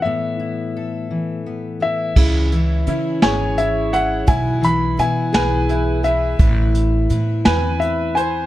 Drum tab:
CC |------|x-----|------|------|
HH |------|-xxxxx|xxxxxx|xxxxxx|
SD |------|---o--|---o--|---o--|
BD |------|o-----|o-----|o-----|